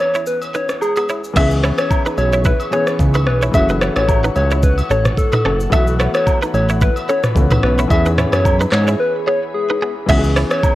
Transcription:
Already playing: E3 B3 C#4 G#4
0.00 C#5, high agogo
0.15 E4 C#5, shaker
0.27 B4, shaker
0.42 high agogo, shaker
0.54 D#4 B4 C#5, shaker
0.69 cross-stick, shaker
0.81 G#4, low woodblock, shaker
0.96 B3 G#4, high agogo, shaker
1.09 E4 C#5, shaker
1.24 shaker
1.33 C#2 E3 B3 C#4 G#4 E5 B5 C#6, kick, crash, high agogo, shaker
1.38 G#4
1.51 shaker
1.63 E4 C#5, cross-stick, shaker
1.78 C#5, cross-stick, high agogo, shaker
1.90 kick, low woodblock, shaker
2.06 D#4 B4, shaker
2.18 B1 C#5, high agogo, shaker
2.33 E4 C#5, shaker
2.45 E4 B4, kick, shaker
2.60 high agogo, shaker
2.71 E3 B3 C#4 G#4 C#5, shaker
2.87 cross-stick, shaker
2.99 C#2, kick, shaker
3.14 D#4 B4, high agogo, shaker
3.27 B1 B4, cross-stick
3.42 E4 C#5, shaker
3.52 F#1 E3 A3 C#4 A4 E5 F#5 C#6, kick, high agogo, shaker
3.57 F#4
3.69 D#4 B4, shaker
3.81 E4 C#5, cross-stick, shaker
3.96 A1 C#5, cross-stick, high agogo, shaker
4.08 kick, low woodblock, shaker
4.24 D#4 B4, shaker
4.36 C#2 C#5, high agogo, shaker
4.51 E4 C#5, shaker
4.63 B4, kick, shaker
4.78 high agogo, shaker
4.90 A1 C#4 A4 C#5, shaker
5.05 cross-stick, mid tom, shaker
5.18 A4, kick, shaker
5.32 D#4 B4, mid tom, high agogo, shaker
5.45 F#1 C#4 A4, cross-stick
5.60 shaker
5.70 B1 E3 A3 B3 A4 E5 B5, kick, high agogo, shaker
5.75 F#4
5.87 shaker
6.00 E4 C#5, cross-stick, shaker
6.14 C#5, cross-stick, high agogo, shaker
6.27 kick, low woodblock, shaker
6.42 D#4 B4, shaker
6.54 A1 C#5, high agogo, shaker
6.69 E4 C#5, shaker
6.81 E4 B4, kick, shaker
6.96 high agogo, shaker
7.09 C#4 A4 C#5, shaker
7.24 cross-stick, mid tom, shaker
7.35 C#2 E3 A3 B3 C#4, kick, shaker
7.51 D#4 B4, mid tom, high agogo, shaker
7.63 B1 B4, cross-stick
7.78 E4 C#5, shaker
7.88 E2 E3 B3 C#4 G#4 C#5 E5, kick, high agogo, shaker
7.93 G#4
8.06 D#4 B4, shaker
8.18 E4 C#5, cross-stick, mid tom, shaker
8.32 F#2 C#5, cross-stick, high agogo, shaker
8.45 kick, low woodblock, shaker
8.61 D#4 B4, shaker
8.72 G#2 C#5, cross-stick, clap, high agogo, shaker
8.88 E4 C#5, shaker
9.00 B4
9.27 B3 G#4 C#5
9.54 G#4
9.70 D#4 B4
9.82 B3 G#4
10.06 C#2 E3 B3 C#4 G#4 C#5 E5 B5, kick, crash, high agogo, shaker
10.10 F#4 G#4
10.18 G#4
10.24 shaker
10.36 E4 C#5, cross-stick, open hi-hat, shaker
10.51 C#5, cross-stick, high agogo, shaker
10.63 kick, low woodblock, shaker

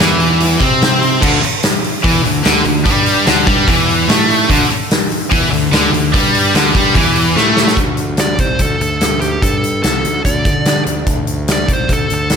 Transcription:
Already playing: E3
0.00 E2, snare
0.20 open hi-hat
0.40 open hi-hat
0.59 C3 C4, kick, open hi-hat
0.82 snare, open hi-hat
1.03 open hi-hat
1.21 D2 D3, kick, crash
1.42 muted overdriven electric guitar stroke, muted distorted electric guitar stroke, muted fingered electric bass stroke, open hi-hat
1.63 snare, open hi-hat
1.84 open hi-hat
2.03 E2 E3, kick, open hi-hat
2.24 D2 D3, open hi-hat
2.43 D2 D3, snare, open hi-hat
2.64 D2 D3, open hi-hat
2.85 G2 G3, kick, open hi-hat
3.06 open hi-hat
3.26 D2 D3, snare, open hi-hat
3.46 G2 G3, kick, open hi-hat
3.67 E2 E3, kick, open hi-hat
3.89 open hi-hat
4.08 A2 A3, snare, open hi-hat
4.30 open hi-hat
4.49 D2 D3, kick, open hi-hat
4.70 muted overdriven electric guitar stroke, muted fingered electric bass stroke, muted distorted electric guitar stroke, open hi-hat
4.91 snare, open hi-hat
5.11 open hi-hat
5.31 E2 E3, kick, open hi-hat
5.51 D2 D3, open hi-hat
5.72 D2 D3, snare, open hi-hat
5.92 D2 D3, open hi-hat
6.13 G2 G3, kick, open hi-hat
6.35 open hi-hat
6.54 D2 D3, snare, open hi-hat
6.75 G2 G3, kick, open hi-hat
6.95 E2 E3, kick, open hi-hat
7.16 open hi-hat
7.36 A2 A3, snare
7.57 snare
7.67 snare
7.77 D2, kick, closed hi-hat
7.97 closed hi-hat
8.17 D5, snare, closed hi-hat
8.38 C2 C5, kick, closed hi-hat
8.59 D2 A4, kick, closed hi-hat
8.80 D2 A4, closed hi-hat
9.01 snare, closed hi-hat
9.21 G4, closed hi-hat
9.42 G2 A4, kick, closed hi-hat
9.64 closed hi-hat
9.83 C2 A4, snare, closed hi-hat
10.05 D2, closed hi-hat
10.25 D2 D5, kick, closed hi-hat
10.45 D3, kick, closed hi-hat
10.65 snare, closed hi-hat
10.86 D2, closed hi-hat
11.06 D2, kick, closed hi-hat
11.27 closed hi-hat
11.48 snare, closed hi-hat
11.52 D5
11.68 C2, kick, closed hi-hat
11.73 C5
11.89 D2 A4, kick, closed hi-hat
12.10 D2, closed hi-hat
12.14 A4
12.30 snare, closed hi-hat

